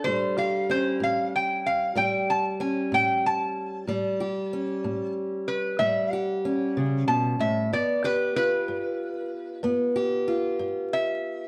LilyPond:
<<
  \new Staff \with { instrumentName = "Resonator guitar played with a steel bar" } { \time 12/8 \key a \dorian \tempo 4. = 63 c''8 f''8 c''8 f''8 g''8 f''8 g''8 a''8 gis''8 g''8 a''4~ | a''2 r8 b'8 e''8 fis''4. a''8 e''8 | d''8 b'8 b'2 r2 e''4 | }
  \new Staff \with { instrumentName = "Steel-string acoustic guitar" } { \clef bass \time 12/8 \key a \dorian << { g8 g'8 cis'2 g4 cis'2 | g8 g'8 cis'2 g8 g'8 cis'2 | b8 g'8 f'2 b8 g'8 f'2 | } \\ { a,4 r8 a,4 r8 a,4 r8 a,4 r8 | a,4 r8 a,4 r8 a,4 r8 cis8 b,8 a,8 | g,4 r8 g,4 r8 g,4 r8 g,4 r8 | } >> }
>>